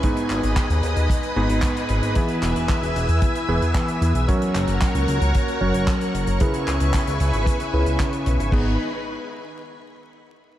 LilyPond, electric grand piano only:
\new Staff \with { instrumentName = "Electric grand piano" } { \time 4/4 \key gis \minor \tempo 4 = 113 <gis, b dis' gis' b'>2~ <gis, b dis' gis' b'>8 <gis, b dis' gis' b'>4. | <e b e' gis' b'>2~ <e b e' gis' b'>8 <e b e' gis' b'>4. | <fis cis' fis' ais' cis''>2~ <fis cis' fis' ais' cis''>8 <fis cis' fis' ais' cis''>4. | <cis cis' e' gis' b'>2~ <cis cis' e' gis' b'>8 <cis cis' e' gis' b'>4. |
<b dis' gis' b'>8 r2. r8 | }